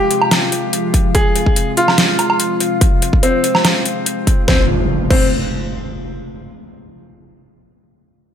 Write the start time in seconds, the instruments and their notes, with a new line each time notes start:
Already playing: ambient pad C3 F3 G#3 F4, grand piano G4
0.11 closed hi-hat
0.22 low woodblock
0.31 snare, closed hi-hat, low woodblock
0.52 closed hi-hat
0.73 closed hi-hat
0.94 kick, closed hi-hat
1.15 grand piano G#4, kick, closed hi-hat
1.36 closed hi-hat
1.46 kick
1.56 closed hi-hat
1.77 grand piano F4, closed hi-hat
1.88 snare, low woodblock
1.98 snare, closed hi-hat
2.19 closed hi-hat, low woodblock
2.30 low woodblock
2.40 closed hi-hat
2.60 closed hi-hat
2.81 kick, closed hi-hat
3.02 closed hi-hat
3.13 kick
3.23 grand piano C4, closed hi-hat
3.44 closed hi-hat
3.55 snare, low woodblock
3.65 snare, closed hi-hat, low woodblock
3.85 closed hi-hat
4.06 closed hi-hat
4.27 kick, closed hi-hat
4.48 grand piano C4, kick, snare, impact
5.11 grand piano C4, kick, crash